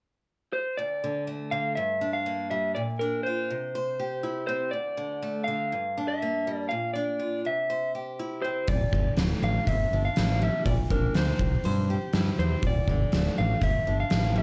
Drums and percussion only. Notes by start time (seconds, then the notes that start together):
8.68 kick, open hi-hat
8.93 kick
9.17 snare, open hi-hat
9.67 kick, open hi-hat
10.16 snare, open hi-hat
10.66 kick, open hi-hat
10.90 kick
11.14 snare, open hi-hat
11.39 kick
11.64 open hi-hat
12.13 snare, open hi-hat
12.62 kick, open hi-hat
12.88 kick
13.12 snare, open hi-hat
13.61 kick, open hi-hat
14.10 snare, open hi-hat